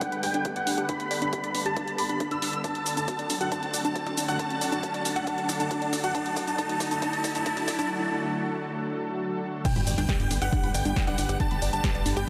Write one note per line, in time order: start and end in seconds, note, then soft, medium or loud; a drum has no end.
0.00 9.61 D3 medium
0.00 2.60 G3 medium
0.00 2.60 B3 medium
0.00 0.07 D4 medium
0.00 9.61 A4 medium
0.00 2.60 B4 medium
0.00 0.20 F#5 medium
0.00 kick loud
0.00 closed hi-hat medium
0.00 riser medium
0.12 0.18 B5 loud
0.12 closed hi-hat soft
0.23 0.32 D5 loud
0.23 0.53 G5 medium
0.23 open hi-hat loud
0.34 0.40 D4 medium
0.34 closed hi-hat soft
0.45 0.51 G4 medium
0.45 kick loud
0.45 closed hi-hat medium
0.56 0.65 D5 loud
0.56 0.86 F#5 medium
0.56 closed hi-hat medium
0.67 0.73 D4 medium
0.67 open hi-hat loud
0.78 0.87 G4 loud
0.78 closed hi-hat medium
0.89 0.95 D4 medium
0.89 1.18 B5 loud
0.89 1.19 B5 medium
0.89 kick loud
0.89 closed hi-hat medium
1.00 1.06 B5 loud
1.00 closed hi-hat medium
1.11 1.20 D5 loud
1.11 open hi-hat loud
1.22 1.28 D4 medium
1.22 1.61 B5 medium
1.22 closed hi-hat soft
1.33 1.39 G4 medium
1.33 kick loud
1.33 closed hi-hat medium
1.44 1.53 D5 loud
1.44 closed hi-hat medium
1.55 1.61 D4 medium
1.55 open hi-hat loud
1.66 1.75 G4 loud
1.66 1.95 A5 medium
1.66 closed hi-hat soft
1.77 1.83 D4 medium
1.77 kick loud
1.77 closed hi-hat medium
1.88 1.94 B5 loud
1.88 closed hi-hat soft
1.98 2.28 B5 medium
1.98 2.05 D6 medium
1.98 open hi-hat loud
2.09 2.16 D4 medium
2.09 closed hi-hat soft
2.20 2.24 D4 medium
2.20 kick loud
2.20 closed hi-hat medium
2.31 2.37 D4 medium
2.31 2.61 E6 medium
2.31 closed hi-hat soft
2.42 2.51 D4 loud
2.42 open hi-hat loud
2.53 2.62 D4 medium
2.53 closed hi-hat soft
2.64 9.61 F#3 medium
2.64 9.61 A3 medium
2.64 2.70 D4 medium
2.64 9.61 F#4 medium
2.64 2.94 A5 medium
2.64 2.94 A5 loud
2.64 kick loud
2.64 closed hi-hat medium
2.64 shaker soft
2.75 2.81 A5 loud
2.75 closed hi-hat medium
2.86 2.95 D5 loud
2.86 open hi-hat loud
2.86 shaker medium
2.97 3.03 D4 medium
2.97 3.36 A5 medium
2.97 closed hi-hat soft
2.97 shaker soft
3.08 3.14 F#4 medium
3.08 kick loud
3.08 closed hi-hat medium
3.08 shaker soft
3.19 3.28 D5 medium
3.19 closed hi-hat medium
3.30 3.36 D4 medium
3.30 open hi-hat loud
3.30 shaker medium
3.41 3.50 F#4 medium
3.41 3.50 F#5 medium
3.41 closed hi-hat soft
3.41 shaker soft
3.52 3.58 D4 medium
3.52 3.81 A5 medium
3.52 kick loud
3.52 closed hi-hat medium
3.52 shaker soft
3.63 3.69 A5 medium
3.63 closed hi-hat soft
3.74 3.83 D5 loud
3.74 open hi-hat loud
3.74 shaker medium
3.84 3.91 D4 medium
3.84 4.24 A5 medium
3.84 closed hi-hat medium
3.84 shaker soft
3.96 4.02 F#4 medium
3.96 kick loud
3.96 closed hi-hat medium
3.96 shaker soft
4.07 4.16 D5 medium
4.07 closed hi-hat medium
4.07 percussion blips medium
4.17 4.24 D4 medium
4.17 open hi-hat loud
4.17 shaker medium
4.28 4.38 F#4 loud
4.28 4.38 F#5 medium
4.28 closed hi-hat medium
4.28 percussion blips medium
4.28 shaker soft
4.39 4.46 D4 medium
4.39 4.69 A5 loud
4.39 kick loud
4.39 closed hi-hat medium
4.39 shaker soft
4.50 4.56 A5 loud
4.50 closed hi-hat medium
4.61 4.70 D5 medium
4.61 open hi-hat loud
4.61 shaker medium
4.72 4.78 D4 medium
4.72 5.11 A5 medium
4.72 5.12 A5 medium
4.72 closed hi-hat soft
4.72 shaker soft
4.83 4.89 F#4 medium
4.83 kick loud
4.83 closed hi-hat medium
4.83 shaker soft
4.94 5.03 D5 loud
4.94 closed hi-hat medium
5.05 5.11 D4 medium
5.05 open hi-hat loud
5.05 shaker medium
5.16 5.25 F#4 loud
5.16 5.25 F#5 medium
5.16 closed hi-hat medium
5.16 percussion blips medium
5.16 shaker soft
5.27 5.33 D4 medium
5.27 5.56 A5 loud
5.27 5.57 A5 medium
5.27 kick loud
5.27 closed hi-hat medium
5.27 shaker soft
5.38 5.44 A5 loud
5.38 closed hi-hat soft
5.49 5.58 D5 medium
5.49 open hi-hat loud
5.49 percussion blips medium
5.49 shaker medium
5.60 5.66 D4 medium
5.60 5.99 A5 medium
5.60 closed hi-hat medium
5.60 shaker soft
5.71 5.77 F#4 medium
5.71 kick loud
5.71 closed hi-hat medium
5.71 shaker soft
5.82 5.91 D5 loud
5.82 closed hi-hat medium
5.93 5.99 D4 medium
5.93 open hi-hat loud
5.93 percussion blips medium
5.93 shaker medium
6.04 6.13 F#4 medium
6.04 6.13 F#5 medium
6.04 closed hi-hat medium
6.04 shaker soft
6.14 6.21 D4 medium
6.14 6.44 A5 loud
6.14 kick loud
6.14 closed hi-hat medium
6.14 shaker soft
6.26 6.32 A5 loud
6.26 closed hi-hat medium
6.36 6.46 D5 loud
6.36 kick loud
6.36 open hi-hat loud
6.36 shaker medium
6.48 6.54 D4 medium
6.48 6.57 A5 medium
6.48 closed hi-hat medium
6.48 shaker soft
6.58 6.65 D4 medium
6.58 6.88 A5 loud
6.58 kick loud
6.58 closed hi-hat medium
6.58 shaker soft
6.69 6.75 A5 loud
6.69 closed hi-hat medium
6.80 6.89 D5 loud
6.80 kick loud
6.80 open hi-hat loud
6.80 shaker medium
6.91 6.97 D4 medium
6.91 7.00 A5 medium
6.91 closed hi-hat medium
6.91 shaker soft
7.02 7.08 D4 medium
7.02 7.32 A5 loud
7.02 kick loud
7.02 closed hi-hat medium
7.02 shaker soft
7.13 7.19 A5 loud
7.13 closed hi-hat medium
7.24 7.33 D5 loud
7.24 kick loud
7.24 open hi-hat loud
7.24 shaker medium
7.35 7.41 D4 medium
7.35 7.44 A5 loud
7.35 closed hi-hat medium
7.35 shaker soft
7.46 7.52 D4 medium
7.46 7.75 A5 loud
7.46 kick loud
7.46 closed hi-hat medium
7.46 shaker soft
7.57 7.63 A5 loud
7.57 closed hi-hat medium
7.57 percussion blips medium
7.68 7.77 D5 loud
7.68 kick loud
7.68 open hi-hat loud
7.68 shaker medium
7.79 7.85 D4 medium
7.79 7.88 A5 medium
7.79 closed hi-hat medium
7.79 percussion blips medium
7.79 shaker soft
9.65 12.29 D3 medium
9.65 12.29 G3 medium
9.65 12.29 B3 medium
9.65 9.71 D4 medium
9.65 12.29 G4 medium
9.65 12.29 B4 medium
9.65 9.94 G5 loud
9.65 kick loud
9.65 closed hi-hat medium
9.65 crash loud
9.65 sub drop medium
9.65 shaker soft
9.76 9.84 G1 medium
9.76 9.82 B5 loud
9.76 closed hi-hat medium
9.87 9.95 G1 loud
9.87 9.96 D5 loud
9.87 open hi-hat loud
9.87 shaker medium
9.98 10.06 G1 medium
9.98 10.04 D4 medium
9.98 10.37 G5 medium
9.98 closed hi-hat medium
9.98 shaker soft
10.09 10.15 G4 medium
10.09 kick loud
10.09 snare loud
10.09 closed hi-hat medium
10.09 shaker soft
10.20 10.28 G1 medium
10.20 10.29 D5 loud
10.20 closed hi-hat medium
10.31 10.39 G1 medium
10.31 10.37 D4 medium
10.31 open hi-hat loud
10.31 shaker medium
10.42 10.50 G1 medium
10.42 10.51 G4 loud
10.42 10.71 F#5 medium
10.42 closed hi-hat medium
10.42 percussion blips medium
10.42 shaker soft
10.53 10.59 D4 medium
10.53 kick loud
10.53 closed hi-hat medium
10.53 shaker soft
10.64 10.72 G1 medium
10.64 10.70 B5 loud
10.64 closed hi-hat medium
10.74 10.83 G1 loud
10.74 10.84 D5 loud
10.74 11.04 G5 medium
10.74 open hi-hat loud
10.74 shaker medium
10.85 10.94 G1 medium
10.85 10.92 D4 medium
10.85 closed hi-hat medium
10.85 shaker soft
10.96 11.03 G4 medium
10.96 kick loud
10.96 snare loud
10.96 closed hi-hat medium
10.96 shaker soft
11.07 11.16 G1 medium
11.07 11.16 D5 loud
11.07 11.37 F#5 medium
11.07 closed hi-hat medium
11.07 percussion blips medium
11.18 11.27 G1 loud
11.18 11.24 D4 medium
11.18 open hi-hat loud
11.18 shaker medium
11.29 11.38 G1 medium
11.29 11.38 G4 loud
11.29 closed hi-hat medium
11.29 percussion blips medium
11.29 shaker soft
11.40 11.46 D4 medium
11.40 11.70 A5 loud
11.40 11.70 A5 medium
11.40 kick loud
11.40 closed hi-hat medium
11.40 shaker soft
11.51 11.59 G1 medium
11.51 11.57 B5 loud
11.51 closed hi-hat medium
11.62 11.70 G1 loud
11.62 11.71 D5 loud
11.62 open hi-hat loud
11.62 shaker medium
11.73 11.81 G1 medium
11.73 11.79 D4 medium
11.73 12.12 A5 medium
11.73 closed hi-hat medium
11.73 shaker soft
11.84 11.90 G4 medium
11.84 kick loud
11.84 snare loud
11.84 closed hi-hat medium
11.84 shaker soft
11.95 12.03 G1 medium
11.95 12.04 D5 loud
11.95 closed hi-hat medium
12.06 12.14 G1 medium
12.06 12.12 D4 medium
12.06 open hi-hat loud
12.06 shaker medium
12.16 12.25 G1 medium
12.16 12.26 G4 loud
12.16 12.29 G5 medium
12.16 12.29 G5 loud
12.16 closed hi-hat medium
12.16 shaker soft